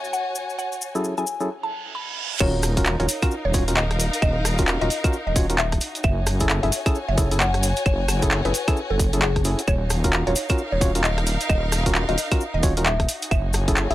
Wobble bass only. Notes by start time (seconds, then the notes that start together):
2.40 D#1
3.00 D#1
3.45 D#1
4.22 D#1
4.82 D#1
5.27 D#1
6.04 F#1
6.63 F#1
7.09 F#1
7.86 F#1
8.45 F#1
8.91 F#1
9.68 D#1
10.27 D#1
10.72 D#1
11.50 D#1
12.09 D#1
12.54 D#1
13.31 F#1
13.91 F#1